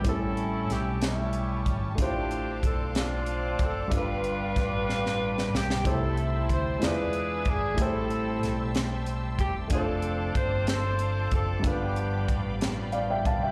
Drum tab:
HH |x-x-x-x-x-x-|x-x-x-x-x-x-|x-x-x-------|x-x-x-x-x-x-|
SD |----o-o-----|------o-----|----o-oo-ooo|------o-----|
BD |o---------o-|o---o-----o-|o---o-------|o---o-----o-|

HH |x-x-x-x-x-x-|x-x-x-x-x-x-|x-x-x-x-x-x-|
SD |----o-o-----|------o-----|------o-----|
BD |o---------o-|o---o-----o-|o---o-----o-|